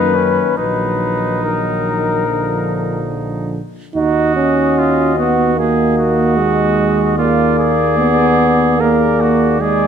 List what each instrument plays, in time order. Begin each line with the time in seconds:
Already playing: tuba F#2, euphonium D#3, french horn A#3, trumpet D#4, cornet B4
0.15 trumpet C#4
0.57 tuba A#1, euphonium D#3, french horn F#3, trumpet D#4, cornet B4
1.43 euphonium D#3, french horn F#3, cornet A#4
2.26 euphonium D3, french horn F3
3.94 tuba D#2, euphonium D#4, trumpet F#4, french horn F#4, cornet D#5
4.36 euphonium C#4
4.78 trumpet F4
5.17 euphonium B3, trumpet F#4
5.56 euphonium A#3, french horn F#4, trumpet G#4, cornet D#5
5.98 trumpet F#4
6.37 euphonium G#3
7.17 euphonium A#3, trumpet F4, french horn G#4, cornet D5
7.59 trumpet G#4
7.98 euphonium B3
8.79 euphonium A#3, french horn G#4, trumpet A#4, cornet D5
9.21 trumpet F#4
9.60 euphonium G#3, french horn G#4, trumpet G#4, cornet D5